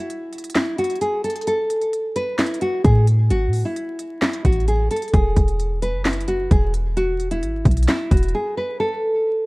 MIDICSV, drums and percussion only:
0, 0, Header, 1, 2, 480
1, 0, Start_track
1, 0, Tempo, 458015
1, 1543, Time_signature, 4, 2, 24, 8
1, 9916, End_track
2, 0, Start_track
2, 0, Title_t, "Drums"
2, 104, Note_on_c, 9, 42, 69
2, 209, Note_off_c, 9, 42, 0
2, 342, Note_on_c, 9, 42, 46
2, 401, Note_off_c, 9, 42, 0
2, 401, Note_on_c, 9, 42, 58
2, 461, Note_off_c, 9, 42, 0
2, 461, Note_on_c, 9, 42, 72
2, 521, Note_off_c, 9, 42, 0
2, 521, Note_on_c, 9, 42, 82
2, 578, Note_off_c, 9, 42, 0
2, 578, Note_on_c, 9, 42, 75
2, 581, Note_on_c, 9, 38, 121
2, 586, Note_on_c, 9, 39, 100
2, 683, Note_off_c, 9, 42, 0
2, 686, Note_off_c, 9, 38, 0
2, 691, Note_off_c, 9, 39, 0
2, 821, Note_on_c, 9, 42, 66
2, 881, Note_off_c, 9, 42, 0
2, 881, Note_on_c, 9, 42, 59
2, 941, Note_off_c, 9, 42, 0
2, 941, Note_on_c, 9, 42, 50
2, 1001, Note_off_c, 9, 42, 0
2, 1001, Note_on_c, 9, 42, 40
2, 1061, Note_off_c, 9, 42, 0
2, 1061, Note_on_c, 9, 42, 75
2, 1165, Note_off_c, 9, 42, 0
2, 1301, Note_on_c, 9, 42, 66
2, 1361, Note_off_c, 9, 42, 0
2, 1361, Note_on_c, 9, 42, 66
2, 1421, Note_off_c, 9, 42, 0
2, 1421, Note_on_c, 9, 42, 66
2, 1481, Note_off_c, 9, 42, 0
2, 1481, Note_on_c, 9, 42, 66
2, 1541, Note_off_c, 9, 42, 0
2, 1541, Note_on_c, 9, 42, 77
2, 1646, Note_off_c, 9, 42, 0
2, 1781, Note_on_c, 9, 42, 81
2, 1886, Note_off_c, 9, 42, 0
2, 1902, Note_on_c, 9, 42, 44
2, 2007, Note_off_c, 9, 42, 0
2, 2024, Note_on_c, 9, 42, 69
2, 2129, Note_off_c, 9, 42, 0
2, 2262, Note_on_c, 9, 42, 78
2, 2366, Note_off_c, 9, 42, 0
2, 2501, Note_on_c, 9, 42, 65
2, 2502, Note_on_c, 9, 38, 126
2, 2507, Note_on_c, 9, 39, 96
2, 2582, Note_off_c, 9, 42, 0
2, 2582, Note_on_c, 9, 42, 64
2, 2606, Note_off_c, 9, 38, 0
2, 2612, Note_off_c, 9, 39, 0
2, 2662, Note_off_c, 9, 42, 0
2, 2662, Note_on_c, 9, 42, 60
2, 2737, Note_off_c, 9, 42, 0
2, 2737, Note_on_c, 9, 42, 65
2, 2842, Note_off_c, 9, 42, 0
2, 2981, Note_on_c, 9, 36, 102
2, 2982, Note_on_c, 9, 42, 74
2, 3086, Note_off_c, 9, 36, 0
2, 3087, Note_off_c, 9, 42, 0
2, 3221, Note_on_c, 9, 42, 86
2, 3325, Note_off_c, 9, 42, 0
2, 3462, Note_on_c, 9, 42, 75
2, 3567, Note_off_c, 9, 42, 0
2, 3699, Note_on_c, 9, 46, 89
2, 3804, Note_off_c, 9, 46, 0
2, 3944, Note_on_c, 9, 42, 68
2, 4048, Note_off_c, 9, 42, 0
2, 4182, Note_on_c, 9, 42, 78
2, 4287, Note_off_c, 9, 42, 0
2, 4421, Note_on_c, 9, 42, 49
2, 4422, Note_on_c, 9, 38, 125
2, 4427, Note_on_c, 9, 39, 98
2, 4526, Note_off_c, 9, 42, 0
2, 4527, Note_off_c, 9, 38, 0
2, 4532, Note_off_c, 9, 39, 0
2, 4542, Note_on_c, 9, 42, 77
2, 4647, Note_off_c, 9, 42, 0
2, 4661, Note_on_c, 9, 42, 68
2, 4662, Note_on_c, 9, 36, 96
2, 4742, Note_off_c, 9, 42, 0
2, 4742, Note_on_c, 9, 42, 55
2, 4766, Note_off_c, 9, 36, 0
2, 4822, Note_off_c, 9, 42, 0
2, 4822, Note_on_c, 9, 42, 39
2, 4902, Note_off_c, 9, 42, 0
2, 4902, Note_on_c, 9, 42, 76
2, 5007, Note_off_c, 9, 42, 0
2, 5142, Note_on_c, 9, 42, 82
2, 5202, Note_off_c, 9, 42, 0
2, 5202, Note_on_c, 9, 42, 68
2, 5262, Note_off_c, 9, 42, 0
2, 5262, Note_on_c, 9, 42, 60
2, 5322, Note_off_c, 9, 42, 0
2, 5322, Note_on_c, 9, 42, 46
2, 5381, Note_off_c, 9, 42, 0
2, 5381, Note_on_c, 9, 42, 75
2, 5382, Note_on_c, 9, 36, 117
2, 5486, Note_off_c, 9, 42, 0
2, 5487, Note_off_c, 9, 36, 0
2, 5622, Note_on_c, 9, 36, 87
2, 5622, Note_on_c, 9, 42, 80
2, 5727, Note_off_c, 9, 36, 0
2, 5727, Note_off_c, 9, 42, 0
2, 5742, Note_on_c, 9, 42, 44
2, 5847, Note_off_c, 9, 42, 0
2, 5865, Note_on_c, 9, 42, 68
2, 5969, Note_off_c, 9, 42, 0
2, 6103, Note_on_c, 9, 42, 78
2, 6208, Note_off_c, 9, 42, 0
2, 6342, Note_on_c, 9, 42, 65
2, 6343, Note_on_c, 9, 38, 124
2, 6348, Note_on_c, 9, 39, 104
2, 6423, Note_off_c, 9, 42, 0
2, 6423, Note_on_c, 9, 42, 63
2, 6448, Note_off_c, 9, 38, 0
2, 6453, Note_off_c, 9, 39, 0
2, 6503, Note_off_c, 9, 42, 0
2, 6503, Note_on_c, 9, 42, 61
2, 6579, Note_off_c, 9, 42, 0
2, 6579, Note_on_c, 9, 42, 67
2, 6684, Note_off_c, 9, 42, 0
2, 6822, Note_on_c, 9, 36, 99
2, 6823, Note_on_c, 9, 42, 74
2, 6927, Note_off_c, 9, 36, 0
2, 6928, Note_off_c, 9, 42, 0
2, 7062, Note_on_c, 9, 42, 84
2, 7167, Note_off_c, 9, 42, 0
2, 7303, Note_on_c, 9, 42, 75
2, 7407, Note_off_c, 9, 42, 0
2, 7542, Note_on_c, 9, 42, 52
2, 7647, Note_off_c, 9, 42, 0
2, 7662, Note_on_c, 9, 42, 76
2, 7767, Note_off_c, 9, 42, 0
2, 7785, Note_on_c, 9, 42, 70
2, 7889, Note_off_c, 9, 42, 0
2, 8021, Note_on_c, 9, 36, 97
2, 8022, Note_on_c, 9, 42, 48
2, 8083, Note_off_c, 9, 42, 0
2, 8083, Note_on_c, 9, 42, 60
2, 8126, Note_off_c, 9, 36, 0
2, 8142, Note_off_c, 9, 42, 0
2, 8142, Note_on_c, 9, 42, 70
2, 8202, Note_off_c, 9, 42, 0
2, 8202, Note_on_c, 9, 42, 80
2, 8260, Note_off_c, 9, 42, 0
2, 8260, Note_on_c, 9, 42, 75
2, 8263, Note_on_c, 9, 38, 121
2, 8268, Note_on_c, 9, 39, 101
2, 8365, Note_off_c, 9, 42, 0
2, 8368, Note_off_c, 9, 38, 0
2, 8373, Note_off_c, 9, 39, 0
2, 8502, Note_on_c, 9, 36, 92
2, 8502, Note_on_c, 9, 42, 67
2, 8563, Note_off_c, 9, 42, 0
2, 8563, Note_on_c, 9, 42, 58
2, 8607, Note_off_c, 9, 36, 0
2, 8622, Note_off_c, 9, 42, 0
2, 8622, Note_on_c, 9, 42, 51
2, 8682, Note_off_c, 9, 42, 0
2, 8682, Note_on_c, 9, 42, 40
2, 8787, Note_off_c, 9, 42, 0
2, 9916, End_track
0, 0, End_of_file